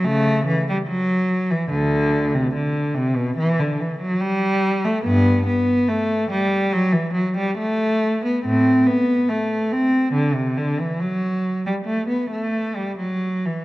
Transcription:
\new Staff \with { instrumentName = "Cello" } { \clef bass \time 4/4 \key g \major \tempo 4 = 71 <cis a>8 e16 g16 fis8. e16 <d, d>8. c16 d8 c16 b,16 | e16 d16 e16 fis16 g8. a16 <g, b>8 b8 a8 g8 | fis16 e16 fis16 g16 a8. b16 <a, c'>8 b8 a8 c'8 | d16 c16 d16 e16 fis8. g16 a16 b16 a8 g16 fis8 e16 | }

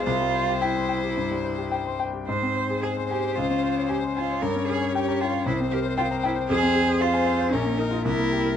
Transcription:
<<
  \new Staff \with { instrumentName = "Grand piano" } { \time 4/4 \key c \phrygian \tempo 4 = 113 c,16 g16 c''16 g'16 g''16 c'''16 g''16 g'16 g,16 g16 c''16 g'16 g''16 c'''16 g''16 g'16 | aes,16 c'16 c''16 aes'16 aes''16 c'''16 aes''16 c''16 des,16 des'16 c''16 des''16 aes''16 c'''16 aes''16 des''16 | g,16 des'16 bes'16 des''16 g''16 bes''16 g''16 des''16 c,16 c'16 bes'16 c''16 g''16 bes''16 g''16 c''16 | f,16 c'16 aes'16 c''16 f''16 aes''16 f''16 c''16 bes,,16 bes16 bes'16 f'16 c,16 bes16 g'16 bes'16 | }
  \new Staff \with { instrumentName = "Violin" } { \time 4/4 \key c \phrygian c''2.~ c''8 r8 | c''1 | des''2 c''2 | c''4 c''4 bes'4 bes'4 | }
  \new Staff \with { instrumentName = "Cello" } { \time 4/4 \key c \phrygian f'4 e'2 r4 | c''4 aes'8 g'8 f'4 g'8 f'8 | bes'8 aes'8 g'8 f'8 e'8 g'8 f'8 e'8 | aes'4 f'4 des'8 ees'8 e'4 | }
>>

